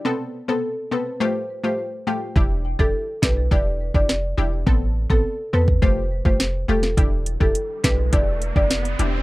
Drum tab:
HH |----------------|----------------|----------------|x-x-x-x-x-x-xxx-|
SD |----------------|------o-----o---|------------o--o|------o-----o---|
BD |----------------|o--o--o-o--o----|o--o---oo--o----|o--o--o-o--o----|